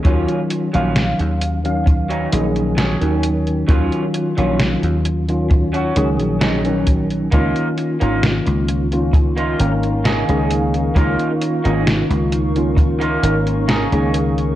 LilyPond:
<<
  \new Staff \with { instrumentName = "Ambient pad" } { \time 4/4 \key des \major \tempo 4 = 66 r1 | r1 | <ees' bes' f'' des'''>1~ | <ees' bes' f'' des'''>1 | }
  \new Staff \with { instrumentName = "Clean electric guitar" } { \time 4/4 \key des \major <ges des' f'>8 r16 <ges des' f'>16 r4 r16 <ges des' ees'>16 r8 <ges des' aes'>8 r8 | <ges des' f'>8 r16 <ges des' f'>16 r4 r16 <ges des' ges'>16 r8 <ges des' ees'>8 r8 | <bes ees' f'>8 r16 <bes ees' f'>16 r4 r16 <bes ees' f'>16 r8 <bes ees' aes'>8 r8 | <bes ees' f'>8 r16 <bes ees' aes'>16 r4 r16 <bes ees' f'>16 r8 <bes ees' aes'>8 r8 | }
  \new Staff \with { instrumentName = "Tine electric piano" } { \time 4/4 \key des \major <ees ges des' f'>8. <ees ges des' f''>4 <ees ges des' f''>8. <ees ges des' aes'>8. <ees ges des'>8. | <ees ges des' f'>8. <ees ges des' f'>4 <ees ges des' f'>8. <ees ges des' aes'>8. <ees ges des'>8. | <ees bes des' f'>8. <ees bes des' f'>4 <ees bes des' f'>8. <ees bes des' bes'>8. <ees bes des' aes'>8. | <ees bes des' f'>8. <ees bes des' f'>4 <ees bes des' f'>8. <ees bes des' bes'>8. <ees bes des' aes'>8. | }
  \new Staff \with { instrumentName = "Slap bass" } { \clef bass \time 4/4 \key des \major ees,16 r8 bes,,8 ees,4~ ees,16 bes,,8. ees,8. | ees,16 r8 bes,,8 ees,4~ ees,16 des,16 bes,,4~ bes,,16 | des,16 r8 aes,,8 des,4~ des,16 aes,,8. des,8. | des,16 r8 aes,,8 des,4~ des,16 aes,,8. des,8. | }
  \new DrumStaff \with { instrumentName = "Drums" } \drummode { \time 4/4 <hh bd>16 hh16 hh16 hh16 <hh sn>16 hh16 hh16 hh16 <hh bd>16 hh16 hh16 hh16 <hh sn>16 hh16 hh16 hh16 | <hh bd>16 hh16 hh16 hh16 <hh sn>16 hh16 hh16 hh16 <hh bd>16 hh16 hh16 hh16 <hh sn>16 hh16 <hh bd>16 hh16 | <hh bd>16 hh16 hh16 hh16 <hh sn>16 hh16 hh16 hh16 <hh bd>16 hh16 hh16 hh16 <hh sn>16 hh16 hh16 hh16 | <hh bd>16 hh16 hh16 hh16 <hh sn>16 hh16 hh16 hh16 <hh bd>16 hh16 hh16 hh16 <hh sn>16 hh16 hh16 hh16 | }
>>